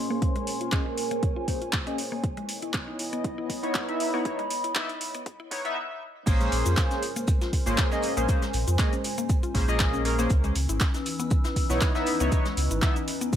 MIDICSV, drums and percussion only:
0, 0, Header, 1, 2, 480
1, 0, Start_track
1, 0, Tempo, 504202
1, 209, Time_signature, 4, 2, 24, 8
1, 12722, End_track
2, 0, Start_track
2, 0, Title_t, "Drums"
2, 209, Note_on_c, 9, 36, 116
2, 209, Note_on_c, 9, 42, 77
2, 304, Note_off_c, 9, 36, 0
2, 305, Note_off_c, 9, 42, 0
2, 339, Note_on_c, 9, 42, 37
2, 434, Note_off_c, 9, 42, 0
2, 448, Note_on_c, 9, 46, 109
2, 544, Note_off_c, 9, 46, 0
2, 579, Note_on_c, 9, 42, 48
2, 674, Note_off_c, 9, 42, 0
2, 685, Note_on_c, 9, 39, 112
2, 689, Note_on_c, 9, 36, 121
2, 689, Note_on_c, 9, 42, 78
2, 780, Note_off_c, 9, 39, 0
2, 784, Note_off_c, 9, 36, 0
2, 784, Note_off_c, 9, 42, 0
2, 928, Note_on_c, 9, 46, 104
2, 1023, Note_off_c, 9, 46, 0
2, 1059, Note_on_c, 9, 42, 50
2, 1154, Note_off_c, 9, 42, 0
2, 1169, Note_on_c, 9, 36, 119
2, 1169, Note_on_c, 9, 42, 72
2, 1264, Note_off_c, 9, 36, 0
2, 1264, Note_off_c, 9, 42, 0
2, 1408, Note_on_c, 9, 36, 62
2, 1408, Note_on_c, 9, 46, 104
2, 1503, Note_off_c, 9, 46, 0
2, 1504, Note_off_c, 9, 36, 0
2, 1538, Note_on_c, 9, 42, 37
2, 1634, Note_off_c, 9, 42, 0
2, 1644, Note_on_c, 9, 39, 123
2, 1648, Note_on_c, 9, 36, 121
2, 1649, Note_on_c, 9, 42, 75
2, 1740, Note_off_c, 9, 39, 0
2, 1744, Note_off_c, 9, 36, 0
2, 1744, Note_off_c, 9, 42, 0
2, 1778, Note_on_c, 9, 42, 35
2, 1873, Note_off_c, 9, 42, 0
2, 1888, Note_on_c, 9, 46, 107
2, 1984, Note_off_c, 9, 46, 0
2, 2128, Note_on_c, 9, 36, 121
2, 2129, Note_on_c, 9, 42, 76
2, 2223, Note_off_c, 9, 36, 0
2, 2224, Note_off_c, 9, 42, 0
2, 2258, Note_on_c, 9, 42, 35
2, 2353, Note_off_c, 9, 42, 0
2, 2368, Note_on_c, 9, 46, 114
2, 2463, Note_off_c, 9, 46, 0
2, 2497, Note_on_c, 9, 42, 49
2, 2593, Note_off_c, 9, 42, 0
2, 2604, Note_on_c, 9, 39, 115
2, 2608, Note_on_c, 9, 36, 125
2, 2608, Note_on_c, 9, 42, 75
2, 2699, Note_off_c, 9, 39, 0
2, 2703, Note_off_c, 9, 36, 0
2, 2703, Note_off_c, 9, 42, 0
2, 2848, Note_on_c, 9, 46, 108
2, 2943, Note_off_c, 9, 46, 0
2, 2979, Note_on_c, 9, 42, 50
2, 3074, Note_off_c, 9, 42, 0
2, 3088, Note_on_c, 9, 36, 123
2, 3089, Note_on_c, 9, 42, 73
2, 3183, Note_off_c, 9, 36, 0
2, 3184, Note_off_c, 9, 42, 0
2, 3328, Note_on_c, 9, 36, 62
2, 3329, Note_on_c, 9, 46, 106
2, 3423, Note_off_c, 9, 36, 0
2, 3424, Note_off_c, 9, 46, 0
2, 3460, Note_on_c, 9, 42, 35
2, 3555, Note_off_c, 9, 42, 0
2, 3565, Note_on_c, 9, 39, 124
2, 3568, Note_on_c, 9, 36, 120
2, 3570, Note_on_c, 9, 42, 80
2, 3661, Note_off_c, 9, 39, 0
2, 3663, Note_off_c, 9, 36, 0
2, 3665, Note_off_c, 9, 42, 0
2, 3699, Note_on_c, 9, 42, 33
2, 3795, Note_off_c, 9, 42, 0
2, 3810, Note_on_c, 9, 46, 110
2, 3905, Note_off_c, 9, 46, 0
2, 4048, Note_on_c, 9, 42, 79
2, 4049, Note_on_c, 9, 36, 120
2, 4144, Note_off_c, 9, 36, 0
2, 4144, Note_off_c, 9, 42, 0
2, 4179, Note_on_c, 9, 42, 34
2, 4274, Note_off_c, 9, 42, 0
2, 4288, Note_on_c, 9, 46, 119
2, 4383, Note_off_c, 9, 46, 0
2, 4418, Note_on_c, 9, 42, 49
2, 4514, Note_off_c, 9, 42, 0
2, 4524, Note_on_c, 9, 39, 119
2, 4529, Note_on_c, 9, 36, 121
2, 4529, Note_on_c, 9, 42, 75
2, 4620, Note_off_c, 9, 39, 0
2, 4624, Note_off_c, 9, 36, 0
2, 4624, Note_off_c, 9, 42, 0
2, 4659, Note_on_c, 9, 42, 35
2, 4754, Note_off_c, 9, 42, 0
2, 4768, Note_on_c, 9, 46, 112
2, 4863, Note_off_c, 9, 46, 0
2, 4898, Note_on_c, 9, 42, 49
2, 4993, Note_off_c, 9, 42, 0
2, 5009, Note_on_c, 9, 36, 123
2, 5009, Note_on_c, 9, 42, 72
2, 5104, Note_off_c, 9, 36, 0
2, 5104, Note_off_c, 9, 42, 0
2, 5249, Note_on_c, 9, 36, 64
2, 5249, Note_on_c, 9, 46, 109
2, 5344, Note_off_c, 9, 36, 0
2, 5344, Note_off_c, 9, 46, 0
2, 5379, Note_on_c, 9, 42, 34
2, 5474, Note_off_c, 9, 42, 0
2, 5968, Note_on_c, 9, 82, 89
2, 5969, Note_on_c, 9, 36, 117
2, 5969, Note_on_c, 9, 42, 85
2, 5969, Note_on_c, 9, 49, 110
2, 5969, Note_on_c, 9, 69, 55
2, 6063, Note_off_c, 9, 82, 0
2, 6064, Note_off_c, 9, 36, 0
2, 6064, Note_off_c, 9, 42, 0
2, 6064, Note_off_c, 9, 49, 0
2, 6064, Note_off_c, 9, 69, 0
2, 6099, Note_on_c, 9, 42, 37
2, 6099, Note_on_c, 9, 69, 33
2, 6194, Note_off_c, 9, 42, 0
2, 6194, Note_off_c, 9, 69, 0
2, 6208, Note_on_c, 9, 46, 110
2, 6212, Note_on_c, 9, 82, 60
2, 6304, Note_off_c, 9, 46, 0
2, 6307, Note_off_c, 9, 82, 0
2, 6338, Note_on_c, 9, 42, 52
2, 6339, Note_on_c, 9, 69, 63
2, 6434, Note_off_c, 9, 42, 0
2, 6434, Note_off_c, 9, 69, 0
2, 6444, Note_on_c, 9, 38, 115
2, 6444, Note_on_c, 9, 39, 120
2, 6448, Note_on_c, 9, 82, 77
2, 6449, Note_on_c, 9, 36, 117
2, 6449, Note_on_c, 9, 42, 82
2, 6449, Note_on_c, 9, 69, 57
2, 6540, Note_off_c, 9, 38, 0
2, 6540, Note_off_c, 9, 39, 0
2, 6543, Note_off_c, 9, 82, 0
2, 6544, Note_off_c, 9, 36, 0
2, 6544, Note_off_c, 9, 42, 0
2, 6544, Note_off_c, 9, 69, 0
2, 6579, Note_on_c, 9, 42, 37
2, 6579, Note_on_c, 9, 69, 34
2, 6584, Note_on_c, 9, 38, 52
2, 6674, Note_off_c, 9, 42, 0
2, 6674, Note_off_c, 9, 69, 0
2, 6679, Note_off_c, 9, 38, 0
2, 6688, Note_on_c, 9, 46, 103
2, 6688, Note_on_c, 9, 82, 68
2, 6784, Note_off_c, 9, 46, 0
2, 6784, Note_off_c, 9, 82, 0
2, 6819, Note_on_c, 9, 42, 54
2, 6819, Note_on_c, 9, 69, 64
2, 6914, Note_off_c, 9, 42, 0
2, 6914, Note_off_c, 9, 69, 0
2, 6925, Note_on_c, 9, 82, 81
2, 6929, Note_on_c, 9, 36, 117
2, 6929, Note_on_c, 9, 42, 82
2, 6930, Note_on_c, 9, 69, 53
2, 7021, Note_off_c, 9, 82, 0
2, 7024, Note_off_c, 9, 36, 0
2, 7025, Note_off_c, 9, 42, 0
2, 7025, Note_off_c, 9, 69, 0
2, 7059, Note_on_c, 9, 42, 40
2, 7059, Note_on_c, 9, 69, 34
2, 7060, Note_on_c, 9, 38, 53
2, 7154, Note_off_c, 9, 42, 0
2, 7154, Note_off_c, 9, 69, 0
2, 7155, Note_off_c, 9, 38, 0
2, 7169, Note_on_c, 9, 36, 63
2, 7169, Note_on_c, 9, 46, 105
2, 7169, Note_on_c, 9, 82, 70
2, 7264, Note_off_c, 9, 36, 0
2, 7264, Note_off_c, 9, 46, 0
2, 7264, Note_off_c, 9, 82, 0
2, 7289, Note_on_c, 9, 38, 37
2, 7299, Note_on_c, 9, 69, 65
2, 7384, Note_off_c, 9, 38, 0
2, 7394, Note_off_c, 9, 69, 0
2, 7404, Note_on_c, 9, 82, 88
2, 7405, Note_on_c, 9, 39, 123
2, 7409, Note_on_c, 9, 36, 127
2, 7409, Note_on_c, 9, 42, 85
2, 7410, Note_on_c, 9, 69, 56
2, 7411, Note_on_c, 9, 38, 119
2, 7500, Note_off_c, 9, 39, 0
2, 7500, Note_off_c, 9, 82, 0
2, 7504, Note_off_c, 9, 36, 0
2, 7505, Note_off_c, 9, 42, 0
2, 7505, Note_off_c, 9, 69, 0
2, 7506, Note_off_c, 9, 38, 0
2, 7533, Note_on_c, 9, 38, 47
2, 7539, Note_on_c, 9, 69, 32
2, 7628, Note_off_c, 9, 38, 0
2, 7634, Note_off_c, 9, 69, 0
2, 7639, Note_on_c, 9, 82, 65
2, 7649, Note_on_c, 9, 46, 103
2, 7734, Note_off_c, 9, 82, 0
2, 7744, Note_off_c, 9, 46, 0
2, 7779, Note_on_c, 9, 42, 39
2, 7780, Note_on_c, 9, 69, 73
2, 7875, Note_off_c, 9, 42, 0
2, 7875, Note_off_c, 9, 69, 0
2, 7889, Note_on_c, 9, 36, 121
2, 7889, Note_on_c, 9, 82, 95
2, 7890, Note_on_c, 9, 42, 86
2, 7890, Note_on_c, 9, 69, 52
2, 7984, Note_off_c, 9, 36, 0
2, 7985, Note_off_c, 9, 42, 0
2, 7985, Note_off_c, 9, 69, 0
2, 7985, Note_off_c, 9, 82, 0
2, 8017, Note_on_c, 9, 38, 62
2, 8020, Note_on_c, 9, 42, 39
2, 8020, Note_on_c, 9, 69, 34
2, 8112, Note_off_c, 9, 38, 0
2, 8115, Note_off_c, 9, 42, 0
2, 8116, Note_off_c, 9, 69, 0
2, 8124, Note_on_c, 9, 82, 65
2, 8130, Note_on_c, 9, 46, 107
2, 8219, Note_off_c, 9, 82, 0
2, 8225, Note_off_c, 9, 46, 0
2, 8260, Note_on_c, 9, 42, 53
2, 8260, Note_on_c, 9, 69, 64
2, 8355, Note_off_c, 9, 42, 0
2, 8355, Note_off_c, 9, 69, 0
2, 8362, Note_on_c, 9, 82, 82
2, 8365, Note_on_c, 9, 38, 126
2, 8366, Note_on_c, 9, 39, 118
2, 8369, Note_on_c, 9, 36, 127
2, 8370, Note_on_c, 9, 42, 82
2, 8370, Note_on_c, 9, 69, 53
2, 8457, Note_off_c, 9, 82, 0
2, 8460, Note_off_c, 9, 38, 0
2, 8461, Note_off_c, 9, 39, 0
2, 8464, Note_off_c, 9, 36, 0
2, 8465, Note_off_c, 9, 42, 0
2, 8466, Note_off_c, 9, 69, 0
2, 8500, Note_on_c, 9, 42, 37
2, 8500, Note_on_c, 9, 69, 32
2, 8595, Note_off_c, 9, 42, 0
2, 8595, Note_off_c, 9, 69, 0
2, 8609, Note_on_c, 9, 82, 70
2, 8610, Note_on_c, 9, 46, 109
2, 8704, Note_off_c, 9, 82, 0
2, 8705, Note_off_c, 9, 46, 0
2, 8739, Note_on_c, 9, 42, 53
2, 8739, Note_on_c, 9, 69, 61
2, 8834, Note_off_c, 9, 42, 0
2, 8835, Note_off_c, 9, 69, 0
2, 8846, Note_on_c, 9, 82, 89
2, 8849, Note_on_c, 9, 36, 122
2, 8850, Note_on_c, 9, 42, 80
2, 8850, Note_on_c, 9, 69, 50
2, 8941, Note_off_c, 9, 82, 0
2, 8944, Note_off_c, 9, 36, 0
2, 8945, Note_off_c, 9, 42, 0
2, 8945, Note_off_c, 9, 69, 0
2, 8980, Note_on_c, 9, 42, 37
2, 8980, Note_on_c, 9, 69, 31
2, 9075, Note_off_c, 9, 42, 0
2, 9075, Note_off_c, 9, 69, 0
2, 9089, Note_on_c, 9, 36, 64
2, 9089, Note_on_c, 9, 46, 103
2, 9090, Note_on_c, 9, 82, 73
2, 9095, Note_on_c, 9, 38, 50
2, 9184, Note_off_c, 9, 36, 0
2, 9184, Note_off_c, 9, 46, 0
2, 9186, Note_off_c, 9, 82, 0
2, 9190, Note_off_c, 9, 38, 0
2, 9219, Note_on_c, 9, 69, 65
2, 9314, Note_off_c, 9, 69, 0
2, 9325, Note_on_c, 9, 39, 121
2, 9329, Note_on_c, 9, 36, 123
2, 9329, Note_on_c, 9, 42, 80
2, 9329, Note_on_c, 9, 69, 51
2, 9331, Note_on_c, 9, 82, 86
2, 9333, Note_on_c, 9, 38, 114
2, 9420, Note_off_c, 9, 39, 0
2, 9424, Note_off_c, 9, 36, 0
2, 9424, Note_off_c, 9, 42, 0
2, 9425, Note_off_c, 9, 69, 0
2, 9426, Note_off_c, 9, 82, 0
2, 9428, Note_off_c, 9, 38, 0
2, 9460, Note_on_c, 9, 69, 32
2, 9555, Note_off_c, 9, 69, 0
2, 9569, Note_on_c, 9, 38, 36
2, 9569, Note_on_c, 9, 46, 106
2, 9569, Note_on_c, 9, 82, 60
2, 9664, Note_off_c, 9, 38, 0
2, 9664, Note_off_c, 9, 46, 0
2, 9665, Note_off_c, 9, 82, 0
2, 9694, Note_on_c, 9, 38, 36
2, 9700, Note_on_c, 9, 42, 41
2, 9700, Note_on_c, 9, 69, 67
2, 9789, Note_off_c, 9, 38, 0
2, 9795, Note_off_c, 9, 42, 0
2, 9795, Note_off_c, 9, 69, 0
2, 9802, Note_on_c, 9, 82, 94
2, 9809, Note_on_c, 9, 36, 127
2, 9809, Note_on_c, 9, 42, 82
2, 9809, Note_on_c, 9, 69, 53
2, 9897, Note_off_c, 9, 82, 0
2, 9904, Note_off_c, 9, 36, 0
2, 9904, Note_off_c, 9, 42, 0
2, 9904, Note_off_c, 9, 69, 0
2, 9939, Note_on_c, 9, 42, 37
2, 9939, Note_on_c, 9, 69, 32
2, 10034, Note_off_c, 9, 42, 0
2, 10035, Note_off_c, 9, 69, 0
2, 10048, Note_on_c, 9, 82, 69
2, 10049, Note_on_c, 9, 46, 115
2, 10143, Note_off_c, 9, 82, 0
2, 10144, Note_off_c, 9, 46, 0
2, 10179, Note_on_c, 9, 42, 49
2, 10179, Note_on_c, 9, 69, 63
2, 10274, Note_off_c, 9, 42, 0
2, 10274, Note_off_c, 9, 69, 0
2, 10285, Note_on_c, 9, 39, 122
2, 10286, Note_on_c, 9, 82, 99
2, 10289, Note_on_c, 9, 36, 127
2, 10289, Note_on_c, 9, 38, 115
2, 10289, Note_on_c, 9, 42, 75
2, 10289, Note_on_c, 9, 69, 55
2, 10380, Note_off_c, 9, 39, 0
2, 10381, Note_off_c, 9, 82, 0
2, 10384, Note_off_c, 9, 36, 0
2, 10384, Note_off_c, 9, 38, 0
2, 10384, Note_off_c, 9, 42, 0
2, 10384, Note_off_c, 9, 69, 0
2, 10418, Note_on_c, 9, 38, 61
2, 10419, Note_on_c, 9, 42, 37
2, 10419, Note_on_c, 9, 69, 33
2, 10513, Note_off_c, 9, 38, 0
2, 10514, Note_off_c, 9, 42, 0
2, 10514, Note_off_c, 9, 69, 0
2, 10528, Note_on_c, 9, 46, 108
2, 10529, Note_on_c, 9, 82, 68
2, 10624, Note_off_c, 9, 46, 0
2, 10624, Note_off_c, 9, 82, 0
2, 10658, Note_on_c, 9, 42, 51
2, 10658, Note_on_c, 9, 69, 61
2, 10753, Note_off_c, 9, 42, 0
2, 10753, Note_off_c, 9, 69, 0
2, 10761, Note_on_c, 9, 82, 85
2, 10768, Note_on_c, 9, 36, 124
2, 10768, Note_on_c, 9, 42, 77
2, 10768, Note_on_c, 9, 69, 49
2, 10856, Note_off_c, 9, 82, 0
2, 10863, Note_off_c, 9, 42, 0
2, 10863, Note_off_c, 9, 69, 0
2, 10864, Note_off_c, 9, 36, 0
2, 10890, Note_on_c, 9, 38, 48
2, 10899, Note_on_c, 9, 42, 37
2, 10899, Note_on_c, 9, 69, 33
2, 10985, Note_off_c, 9, 38, 0
2, 10994, Note_off_c, 9, 42, 0
2, 10994, Note_off_c, 9, 69, 0
2, 11008, Note_on_c, 9, 36, 62
2, 11008, Note_on_c, 9, 46, 104
2, 11008, Note_on_c, 9, 82, 70
2, 11103, Note_off_c, 9, 46, 0
2, 11103, Note_off_c, 9, 82, 0
2, 11104, Note_off_c, 9, 36, 0
2, 11138, Note_on_c, 9, 69, 66
2, 11142, Note_on_c, 9, 38, 41
2, 11233, Note_off_c, 9, 69, 0
2, 11237, Note_off_c, 9, 38, 0
2, 11242, Note_on_c, 9, 82, 85
2, 11245, Note_on_c, 9, 39, 121
2, 11246, Note_on_c, 9, 38, 113
2, 11248, Note_on_c, 9, 36, 127
2, 11249, Note_on_c, 9, 42, 78
2, 11249, Note_on_c, 9, 69, 54
2, 11337, Note_off_c, 9, 82, 0
2, 11340, Note_off_c, 9, 39, 0
2, 11341, Note_off_c, 9, 38, 0
2, 11343, Note_off_c, 9, 36, 0
2, 11344, Note_off_c, 9, 42, 0
2, 11344, Note_off_c, 9, 69, 0
2, 11378, Note_on_c, 9, 38, 57
2, 11379, Note_on_c, 9, 69, 32
2, 11474, Note_off_c, 9, 38, 0
2, 11474, Note_off_c, 9, 69, 0
2, 11484, Note_on_c, 9, 82, 64
2, 11488, Note_on_c, 9, 46, 111
2, 11579, Note_off_c, 9, 82, 0
2, 11583, Note_off_c, 9, 46, 0
2, 11618, Note_on_c, 9, 42, 40
2, 11619, Note_on_c, 9, 69, 66
2, 11714, Note_off_c, 9, 42, 0
2, 11714, Note_off_c, 9, 69, 0
2, 11728, Note_on_c, 9, 36, 116
2, 11728, Note_on_c, 9, 42, 79
2, 11728, Note_on_c, 9, 69, 54
2, 11729, Note_on_c, 9, 82, 83
2, 11823, Note_off_c, 9, 36, 0
2, 11824, Note_off_c, 9, 42, 0
2, 11824, Note_off_c, 9, 69, 0
2, 11824, Note_off_c, 9, 82, 0
2, 11854, Note_on_c, 9, 38, 60
2, 11858, Note_on_c, 9, 42, 34
2, 11858, Note_on_c, 9, 69, 32
2, 11949, Note_off_c, 9, 38, 0
2, 11953, Note_off_c, 9, 42, 0
2, 11953, Note_off_c, 9, 69, 0
2, 11969, Note_on_c, 9, 46, 108
2, 11971, Note_on_c, 9, 82, 73
2, 12064, Note_off_c, 9, 46, 0
2, 12067, Note_off_c, 9, 82, 0
2, 12099, Note_on_c, 9, 42, 48
2, 12099, Note_on_c, 9, 69, 63
2, 12194, Note_off_c, 9, 42, 0
2, 12195, Note_off_c, 9, 69, 0
2, 12205, Note_on_c, 9, 39, 114
2, 12208, Note_on_c, 9, 36, 127
2, 12209, Note_on_c, 9, 38, 115
2, 12209, Note_on_c, 9, 42, 74
2, 12209, Note_on_c, 9, 69, 54
2, 12209, Note_on_c, 9, 82, 97
2, 12300, Note_off_c, 9, 39, 0
2, 12303, Note_off_c, 9, 36, 0
2, 12304, Note_off_c, 9, 38, 0
2, 12304, Note_off_c, 9, 82, 0
2, 12305, Note_off_c, 9, 42, 0
2, 12305, Note_off_c, 9, 69, 0
2, 12340, Note_on_c, 9, 42, 35
2, 12340, Note_on_c, 9, 69, 33
2, 12435, Note_off_c, 9, 42, 0
2, 12435, Note_off_c, 9, 69, 0
2, 12449, Note_on_c, 9, 46, 107
2, 12450, Note_on_c, 9, 82, 67
2, 12544, Note_off_c, 9, 46, 0
2, 12545, Note_off_c, 9, 82, 0
2, 12580, Note_on_c, 9, 42, 51
2, 12580, Note_on_c, 9, 69, 62
2, 12675, Note_off_c, 9, 42, 0
2, 12675, Note_off_c, 9, 69, 0
2, 12688, Note_on_c, 9, 36, 119
2, 12689, Note_on_c, 9, 42, 73
2, 12689, Note_on_c, 9, 69, 52
2, 12689, Note_on_c, 9, 82, 81
2, 12722, Note_off_c, 9, 36, 0
2, 12722, Note_off_c, 9, 42, 0
2, 12722, Note_off_c, 9, 69, 0
2, 12722, Note_off_c, 9, 82, 0
2, 12722, End_track
0, 0, End_of_file